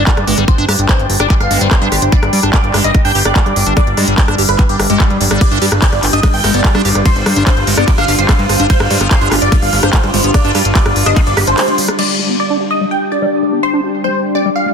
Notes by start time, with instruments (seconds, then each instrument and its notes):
Already playing: synth drone G3 D4, ambient pad D4 G4 G5, supersaw synth D5, impact
0.07 acid bass G3, kick, clap, closed hi-hat
0.17 analog synth bass G2, cross-stick, closed hi-hat
0.27 analog synth bass G1, acid bass G#3, wobble bass B3, open hi-hat
0.38 analog synth bass G1, acid bass G3, wobble bass B3, cross-stick, closed hi-hat
0.48 supersaw synth C5, kick, closed hi-hat
0.58 analog synth bass G1, acid bass D4, closed hi-hat
0.69 analog synth bass G2, acid bass G4, cross-stick, open hi-hat
0.79 analog synth bass G1, closed hi-hat
0.89 acid bass G3, wobble bass B3, supersaw synth C5, kick, cross-stick, clap, closed hi-hat
0.99 analog synth bass G1, closed hi-hat
1.10 analog synth bass G1, open hi-hat
1.20 analog synth bass G1, acid bass D4, supersaw synth D5, cross-stick, closed hi-hat
1.30 acid bass G3, kick, clap, closed hi-hat
1.40 analog synth bass G1, wobble bass B3, supersaw synth F5, cross-stick, closed hi-hat
1.51 analog synth bass G1, acid bass G#3, open hi-hat
1.61 analog synth bass G1, acid bass G3, supersaw synth C5, closed hi-hat
1.71 kick, cross-stick, clap, closed hi-hat
1.82 analog synth bass G2, acid bass D4, closed hi-hat
1.92 analog synth bass G1, acid bass G4, cross-stick, open hi-hat
2.02 analog synth bass G1, closed hi-hat
2.12 acid bass G3, supersaw synth D5, kick, closed hi-hat
2.23 analog synth bass G1, cross-stick, closed hi-hat
2.33 analog synth bass G2, open hi-hat
2.43 analog synth bass G1, acid bass D4, cross-stick, closed hi-hat
2.53 acid bass G3, supersaw synth D5, kick, clap, closed hi-hat
2.64 analog synth bass G1, closed hi-hat
2.74 analog synth bass G1, acid bass G#3, cross-stick, clap, open hi-hat
2.84 analog synth bass G1, acid bass G3, supersaw synth D#5, closed hi-hat
2.95 kick, cross-stick, closed hi-hat
3.05 analog synth bass G1, acid bass D4, supersaw synth G5, open hi-hat
3.15 analog synth bass G1, acid bass G4, open hi-hat
3.25 analog synth bass G1, supersaw synth D5, cross-stick, closed hi-hat
3.36 acid bass G3, kick, clap, closed hi-hat
3.46 analog synth bass G2, cross-stick, closed hi-hat
3.56 analog synth bass G1, open hi-hat
3.67 analog synth bass G1, acid bass D4, closed hi-hat
3.77 acid bass G3, supersaw synth D5, kick, cross-stick, closed hi-hat
3.87 analog synth bass G1, closed hi-hat
3.97 analog synth bass G2, acid bass G#3, cross-stick, open hi-hat
4.08 analog synth bass G1, acid bass G3, closed hi-hat
4.18 supersaw synth D5, kick, clap, closed hi-hat
4.28 analog synth bass G1, acid bass D4, cross-stick, closed hi-hat
4.38 analog synth bass G1, acid bass G4, open hi-hat
4.49 analog synth bass G1, supersaw synth B4, cross-stick, closed hi-hat
4.59 acid bass G3, kick, clap, closed hi-hat
4.69 analog synth bass G1, supersaw synth G4, closed hi-hat
4.80 analog synth bass G1, cross-stick, open hi-hat
4.90 analog synth bass G1, acid bass G#3, supersaw synth G4, closed hi-hat
5.00 acid bass G3, kick, cross-stick, clap, closed hi-hat
5.10 analog synth bass G2, closed hi-hat
5.21 analog synth bass G1, acid bass G3, open hi-hat
5.31 analog synth bass G1, acid bass G3, cross-stick, closed hi-hat
5.41 synth drone F4, supersaw synth D5, kick, cross-stick, closed hi-hat, ride
5.51 analog synth bass G1, acid bass D4, closed hi-hat
5.62 analog synth bass G2, acid bass G4, open hi-hat
5.72 analog synth bass G1, cross-stick, closed hi-hat
5.82 acid bass G3, supersaw synth D5, kick, clap, closed hi-hat, ride
5.93 analog synth bass G1, cross-stick, closed hi-hat
6.03 analog synth bass G1, clap, open hi-hat
6.13 analog synth bass G1, acid bass D4, supersaw synth D#5, closed hi-hat
6.23 acid bass G3, kick, cross-stick, closed hi-hat, ride
6.34 analog synth bass G1, supersaw synth G5, open hi-hat
6.44 analog synth bass G1, acid bass G#3, cross-stick, open hi-hat
6.54 analog synth bass G1, acid bass B3, supersaw synth D5, closed hi-hat
6.64 kick, clap, closed hi-hat, ride
6.75 analog synth bass G2, acid bass D4, cross-stick, closed hi-hat
6.83 analog synth bass G1, wobble bass B3, acid bass G4, ambient pad F5, open hi-hat
6.95 analog synth bass G1, wobble bass B3, cross-stick, closed hi-hat
7.06 acid bass G3, supersaw synth C5, kick, closed hi-hat, ride
7.16 analog synth bass G1, closed hi-hat
7.26 analog synth bass G2, wobble bass D4, cross-stick, open hi-hat
7.36 analog synth bass G1, acid bass D4, closed hi-hat
7.47 acid bass G3, supersaw synth C5, kick, cross-stick, clap, closed hi-hat, ride
7.57 analog synth bass G1, closed hi-hat
7.67 analog synth bass G1, acid bass G#3, open hi-hat
7.77 analog synth bass G1, acid bass B3, supersaw synth D5, cross-stick, closed hi-hat
7.88 kick, clap, closed hi-hat, ride
7.98 analog synth bass G1, acid bass D4, supersaw synth F5, cross-stick, closed hi-hat
8.08 analog synth bass G1, acid bass G4, open hi-hat
8.19 analog synth bass G1, supersaw synth C5, closed hi-hat
8.29 acid bass G3, kick, cross-stick, clap, closed hi-hat, ride
8.39 analog synth bass G2, closed hi-hat
8.49 analog synth bass G1, cross-stick, open hi-hat
8.60 analog synth bass G1, acid bass D4, closed hi-hat
8.70 acid bass G3, supersaw synth C5, kick, closed hi-hat, ride
8.80 analog synth bass G1, cross-stick, closed hi-hat
8.90 analog synth bass G2, acid bass G#3, open hi-hat
9.01 analog synth bass G1, acid bass B3, cross-stick, closed hi-hat
9.11 supersaw synth C5, kick, clap, closed hi-hat, ride
9.21 analog synth bass G1, acid bass D4, closed hi-hat
9.32 analog synth bass G1, acid bass G4, cross-stick, clap, open hi-hat
9.42 analog synth bass G1, supersaw synth D5, closed hi-hat
9.52 acid bass G3, kick, cross-stick, closed hi-hat, ride
9.62 analog synth bass G1, supersaw synth F5, open hi-hat
9.73 analog synth bass G1, open hi-hat
9.83 analog synth bass G1, acid bass D4, supersaw synth C5, cross-stick, closed hi-hat
9.93 acid bass G3, kick, clap, closed hi-hat, ride
10.04 analog synth bass G2, cross-stick, closed hi-hat
10.14 analog synth bass G1, acid bass G#3, open hi-hat
10.24 analog synth bass G1, acid bass B3, closed hi-hat
10.34 supersaw synth D5, kick, cross-stick, closed hi-hat, ride
10.45 analog synth bass G1, acid bass D4, closed hi-hat
10.55 analog synth bass G2, acid bass G4, cross-stick, open hi-hat
10.65 analog synth bass G1, closed hi-hat
10.75 acid bass G3, supersaw synth D5, kick, clap, closed hi-hat, ride
10.86 analog synth bass G1, cross-stick, closed hi-hat
10.96 analog synth bass G1, open hi-hat
11.06 analog synth bass G1, acid bass D4, supersaw synth D#5, cross-stick, closed hi-hat
11.16 acid bass G3, kick, clap, closed hi-hat, ride
11.27 analog synth bass G1, supersaw synth D5, closed hi-hat
11.37 analog synth bass G1, acid bass G4, cross-stick, open hi-hat
11.47 analog synth bass G1, acid bass D4, supersaw synth C5, closed hi-hat
11.58 cross-stick, clap, open hi-hat, ride
11.68 acid bass G#3, closed hi-hat
11.78 acid bass G3, open hi-hat
11.88 acid bass G4, cross-stick, closed hi-hat
11.99 synth drone G3 D4, acid bass G3, supersaw synth D5, crash
12.19 acid bass G#3
12.30 acid bass B3
12.40 supersaw synth D5
12.50 acid bass D4, ambient pad G5
12.60 acid bass G4
12.71 supersaw synth D#5
12.81 acid bass G3
12.91 supersaw synth G5
13.12 acid bass D4, supersaw synth D5
13.22 acid bass G3
13.43 acid bass G#3
13.53 acid bass B3
13.63 supersaw synth C5
13.73 acid bass D4
13.84 acid bass G4
14.04 acid bass G3, supersaw synth C5
14.35 acid bass D4, supersaw synth D5
14.45 acid bass G3
14.56 supersaw synth F5
14.66 acid bass G#3